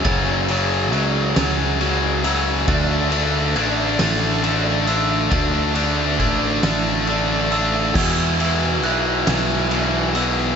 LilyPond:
<<
  \new Staff \with { instrumentName = "Glockenspiel" } { \time 6/8 \key d \lydian \tempo 4. = 46 a'''4 gis'''8 a'''4 e'''8 | a'''4 gis'''8 a'''4 e'''8 | a'''4 gis'''8 a'''4 e'''8 | gis'''4 fis'''8 gis'''4 e'''8 | }
  \new Staff \with { instrumentName = "Distorted electric guitar" } { \clef bass \time 6/8 \key d \lydian <fis, cis fis>8 <fis, cis fis>8 <fis, cis fis>8 <fis, cis fis>8 <fis, cis fis>8 <fis, cis fis>8 | <d a d'>8 <d a d'>8 <d a d'>8 <d a d'>8 <d a d'>8 <d a d'>8 | <d a d'>8 <d a d'>8 <d a d'>8 <d a d'>8 <d a d'>8 <d a d'>8 | <e, b, e>8 <e, b, e>8 <e, b, e>8 <e, b, e>8 <e, b, e>8 <e, b, e>8 | }
  \new Staff \with { instrumentName = "Picked electric bass" } { \clef bass \time 6/8 \key d \lydian fis,,4 cis,8 cis,4. | d,4 a,,8 a,,4. | d,4 a,,8 a,,4. | e,4 b,,8 b,,4. | }
  \new DrumStaff \with { instrumentName = "Drums" } \drummode { \time 6/8 <bd cymr>8 cymr8 cymr8 <cymr sn>8 cymr8 cymr8 | <bd cymr>8 cymr8 cymr8 <cymr sn>8 cymr8 cymr8 | <bd cymr>8 cymr8 <bd cymr>8 <cymr sn>8 cymr8 cymr8 | <cymc bd>8 cymr8 cymr8 <cymr sn>8 cymr8 cymr8 | }
>>